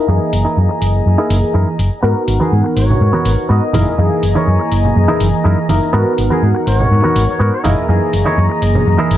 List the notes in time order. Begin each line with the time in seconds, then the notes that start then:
Already playing: D#4 E4 G#4 A#4 D#5 A#5
0.08 F#2 E3 A#3 G#4 D#5
0.33 F#1, open hi-hat
0.45 D#4 E4 G#4 A#4
0.57 F#2
0.69 muted clean electric guitar stroke
0.81 F#1, muted clean electric guitar stroke, open hi-hat
1.06 F#2
1.18 D#4 E4 G#4 A#4
1.30 F#1, open hi-hat
1.43 muted fingered electric bass stroke
1.54 F#2 D#4 E4 G#4 A#4
1.78 F#1, muted clean electric guitar stroke, open hi-hat
2.03 G#2 B3 D#4 F#4 A#4 F#5
2.28 G#1, open hi-hat
2.40 B3 F#4 G#4 A#4, muted fingered electric bass stroke, high conga, shaker
2.52 G#2, shaker
2.64 muted clean electric guitar stroke
2.76 G#1 C#5, muted clean electric guitar stroke, open hi-hat, shaker
2.89 low conga, shaker
3.01 G#2, shaker
3.13 B3 F#4 A#4, high conga
3.25 G#1, open hi-hat, shaker
3.39 shaker
3.49 G#2 B3 F#4 A#4 D#5
3.73 F#1 A#3 D#4 E4 G#4 A#4 D#5 A#5, open hi-hat, high conga, low conga, shaker
3.87 shaker
3.98 F#2 E3 A#3 G#4 D#5, shaker
4.12 shaker
4.23 F#1, open hi-hat, shaker
4.35 D#4 E4 G#4 A#4 C#5, high conga, shaker
4.47 F#2, shaker
4.59 muted clean electric guitar stroke, shaker
4.71 F#1, muted clean electric guitar stroke, open hi-hat
4.85 low conga, shaker
4.96 F#2, shaker
5.08 D#4 E4 G#4 A#4, high conga
5.20 F#1, open hi-hat
5.34 shaker
5.44 F#2 D#4 E4 G#4 A#4
5.68 F#1 A#3 D#4 E4 A#4, muted clean electric guitar stroke, open hi-hat, high conga, shaker
5.83 shaker
5.93 G#2 B3 D#4 F#4 A#4 F#5, shaker
6.18 G#1, open hi-hat
6.30 B3 F#4 G#4 A#4, high conga, shaker
6.43 G#2, shaker
6.55 muted clean electric guitar stroke
6.66 G#1 C#5, muted clean electric guitar stroke, open hi-hat
6.80 low conga, shaker
6.91 G#2, shaker
7.04 B3 F#4 A#4, high conga
7.15 G#1, open hi-hat, shaker
7.29 C#5, muted fingered electric bass stroke
7.39 G#2 B3 F#4 A#4
7.54 C#5
7.64 F#1 A#3 D#4 E4 G#4 A#4 D#5 A#5, open hi-hat, high conga, low conga, shaker
7.78 shaker
7.88 F#2 E3 A#3 G#4 D#5, shaker
8.02 shaker
8.13 F#1, open hi-hat
8.25 D#4 E4 G#4 A#4 C#5, high conga, shaker
8.38 F#2, shaker
8.50 muted clean electric guitar stroke, shaker
8.61 F#1, muted clean electric guitar stroke, open hi-hat
8.74 low conga, shaker
8.87 F#2, shaker
8.98 D#4 E4 G#4 A#4, high conga, shaker
9.11 F#1, open hi-hat, shaker